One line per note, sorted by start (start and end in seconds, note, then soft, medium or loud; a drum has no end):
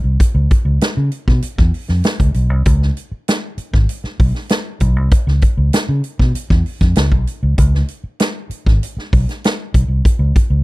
0.04 0.16 C2 medium
0.20 kick loud
0.20 closed hi-hat medium
0.35 0.47 C#2 medium
0.51 kick loud
0.51 closed hi-hat medium
0.65 0.77 C#2 medium
0.81 muted fingered electric bass stroke soft
0.81 snare loud
0.81 closed hi-hat loud
0.97 1.09 C#3 medium
1.11 closed hi-hat medium
1.28 1.39 B2 medium
1.28 kick medium
1.28 snare soft
1.42 muted fingered electric bass stroke soft
1.42 closed hi-hat loud
1.58 1.70 E2 medium
1.58 kick loud
1.58 snare soft
1.74 open hi-hat medium
1.88 2.01 F2 medium
1.88 snare soft
2.04 snare loud
2.04 closed hi-hat medium
2.20 2.32 C#2 medium
2.20 kick medium
2.20 closed hi-hat medium
2.34 2.50 B1 medium
2.34 closed hi-hat medium
2.50 2.62 C2 medium
2.65 2.89 C#2 loud
2.65 kick loud
2.65 closed hi-hat medium
2.82 snare soft
2.97 closed hi-hat medium
3.12 muted fingered electric bass stroke soft
3.28 snare loud
3.28 closed hi-hat loud
3.58 muted fingered electric bass stroke soft
3.58 closed hi-hat medium
3.73 3.85 G#1 medium
3.73 kick medium
3.73 snare soft
3.89 closed hi-hat loud
4.04 muted fingered electric bass stroke soft
4.04 snare soft
4.19 4.31 B1 medium
4.19 kick loud
4.19 open hi-hat medium
4.35 snare soft
4.49 snare loud
4.49 closed hi-hat loud
4.80 4.96 B1 loud
4.80 kick medium
4.80 closed hi-hat medium
4.96 5.08 C2 medium
5.11 kick loud
5.11 closed hi-hat medium
5.27 5.39 C#2 medium
5.27 snare soft
5.42 kick loud
5.42 closed hi-hat medium
5.57 5.69 C#2 medium
5.73 snare loud
5.73 closed hi-hat loud
5.89 6.00 C#3 medium
6.04 closed hi-hat medium
6.19 6.31 B2 medium
6.19 kick medium
6.19 snare soft
6.34 muted fingered electric bass stroke soft
6.34 closed hi-hat loud
6.50 6.62 E2 medium
6.50 kick medium
6.50 snare soft
6.66 open hi-hat medium
6.81 6.93 F2 medium
6.81 kick medium
6.81 snare soft
6.81 closed hi-hat soft
6.96 7.12 C#2 medium
6.96 snare loud
6.96 closed hi-hat loud
7.12 7.24 B1 medium
7.12 kick medium
7.27 closed hi-hat medium
7.43 7.54 C#2 medium
7.58 7.81 C#2 medium
7.58 kick loud
7.58 closed hi-hat medium
7.74 snare soft
7.88 closed hi-hat medium
8.04 muted fingered electric bass stroke soft
8.20 snare loud
8.20 closed hi-hat loud
8.50 muted fingered electric bass stroke soft
8.50 closed hi-hat medium
8.66 8.78 G#1 loud
8.66 kick medium
8.66 snare soft
8.83 closed hi-hat medium
8.97 muted fingered electric bass stroke soft
8.97 snare soft
9.13 9.24 B1 medium
9.13 kick loud
9.13 open hi-hat medium
9.29 snare soft
9.29 closed hi-hat medium
9.44 snare loud
9.44 closed hi-hat loud
9.74 9.86 B1 medium
9.74 kick medium
9.74 closed hi-hat medium
9.88 10.00 C2 medium
10.05 kick loud
10.05 closed hi-hat medium
10.19 10.31 C#2 medium
10.36 kick loud
10.36 closed hi-hat medium
10.50 10.62 C#2 medium